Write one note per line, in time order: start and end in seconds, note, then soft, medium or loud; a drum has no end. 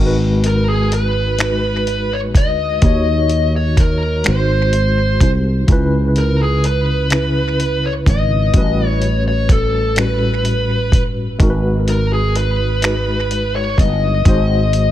0.00 2.36 G#1 medium
0.00 1.25 G#3 medium
0.00 1.26 D#4 medium
0.00 1.27 F#4 medium
0.06 1.31 B4 medium
0.44 0.69 A#4 medium
0.44 closed hi-hat medium
0.69 0.93 G#4 medium
0.92 2.15 B4 medium
0.92 closed hi-hat medium
1.38 2.68 G#3 medium
1.38 2.69 D#4 soft
1.38 2.70 F#4 soft
1.38 finger snap medium
1.38 closed hi-hat medium
1.43 2.71 B4 medium
1.87 closed hi-hat soft
2.13 2.19 C#5 medium
2.35 2.79 D2 medium
2.35 3.56 D#5 loud
2.35 kick medium
2.35 closed hi-hat medium
2.81 4.22 D#2 medium
2.81 4.11 D#3 medium
2.81 4.12 D#4 medium
2.81 4.13 F#4 medium
2.81 kick medium
2.81 closed hi-hat medium
2.86 4.14 C#5 medium
3.29 closed hi-hat soft
3.56 3.80 C#5 medium
3.77 4.28 A#4 medium
3.77 kick medium
3.77 closed hi-hat medium
4.24 5.18 G#1 medium
4.24 5.54 G#3 medium
4.24 5.55 D#4 soft
4.24 5.56 F#4 medium
4.24 5.30 C5 medium
4.24 finger snap medium
4.24 closed hi-hat medium
4.29 5.56 C5 medium
4.73 closed hi-hat medium
5.20 5.65 C2 medium
5.20 kick medium
5.20 closed hi-hat medium
5.67 8.03 C#2 medium
5.67 6.97 C#3 medium
5.67 6.98 C#4 medium
5.67 6.99 E4 medium
5.67 kick medium
5.67 closed hi-hat medium
5.72 7.00 B4 medium
6.16 6.42 A#4 medium
6.16 closed hi-hat soft
6.43 6.66 G#4 medium
6.64 7.87 B4 medium
6.64 closed hi-hat medium
7.10 8.40 C#3 medium
7.10 8.41 C#4 medium
7.10 8.42 E4 medium
7.10 finger snap medium
7.10 closed hi-hat medium
7.15 8.43 B4 medium
7.60 closed hi-hat soft
7.86 7.92 C#5 medium
8.06 8.50 G#1 medium
8.06 8.88 D#5 medium
8.06 kick medium
8.06 closed hi-hat medium
8.53 10.93 A1 medium
8.53 9.83 A2 medium
8.53 9.83 G3 medium
8.53 9.84 C#4 medium
8.53 9.84 F#4 medium
8.53 kick medium
8.53 closed hi-hat medium
8.57 9.85 B4 medium
8.88 9.23 C#5 medium
9.02 closed hi-hat soft
9.28 9.51 C#5 medium
9.49 9.99 A4 medium
9.49 kick medium
9.49 closed hi-hat medium
9.96 11.26 A2 medium
9.96 11.26 G3 medium
9.96 11.27 C#4 soft
9.96 11.28 F#4 medium
9.96 11.01 B4 medium
9.96 finger snap medium
9.96 closed hi-hat medium
10.01 11.28 B4 medium
10.45 closed hi-hat soft
10.92 11.36 G1 medium
10.92 kick medium
10.92 closed hi-hat medium
11.39 13.74 G#1 medium
11.39 12.68 G#3 medium
11.39 12.69 D#4 medium
11.39 12.70 F#4 medium
11.39 kick medium
11.39 closed hi-hat medium
11.43 11.48 A#4 medium
11.50 12.74 B4 medium
11.88 12.13 A#4 medium
11.88 closed hi-hat soft
12.13 12.37 G#4 medium
12.36 13.55 B4 medium
12.36 closed hi-hat medium
12.81 14.11 G#3 medium
12.81 14.12 D#4 medium
12.81 14.13 F#4 medium
12.81 finger snap loud
12.81 closed hi-hat medium
12.86 14.14 B4 medium
13.31 closed hi-hat medium
13.56 13.79 C#5 medium
13.78 14.22 G1 medium
13.78 14.91 D#5 medium
13.78 kick medium
13.78 closed hi-hat medium
14.25 14.91 G#1 medium
14.25 14.91 G#3 medium
14.25 14.91 D#4 medium
14.25 14.91 F#4 medium
14.25 kick medium
14.25 closed hi-hat medium
14.29 14.91 C5 medium
14.73 closed hi-hat soft